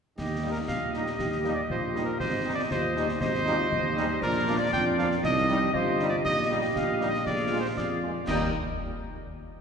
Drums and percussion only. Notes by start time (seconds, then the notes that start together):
0.18 concert bass drum, snare, crash
0.68 concert bass drum, snare
0.94 snare
1.06 snare
1.19 concert bass drum, snare
1.32 snare
1.44 snare
1.70 concert bass drum
1.96 snare
2.20 concert bass drum, snare
2.71 concert bass drum, snare
2.96 snare
3.08 snare
3.21 concert bass drum, snare
3.34 snare
3.46 snare
3.72 concert bass drum
3.97 snare
4.22 concert bass drum, snare, crash
4.73 concert bass drum, snare
4.99 snare
5.11 snare
5.23 concert bass drum, snare
5.36 snare
5.48 snare
5.74 concert bass drum
5.99 snare
6.25 concert bass drum, snare
6.76 concert bass drum, snare
7.01 snare
7.14 snare
7.26 concert bass drum, snare
7.77 concert bass drum, snare
8.28 concert bass drum, snare, crash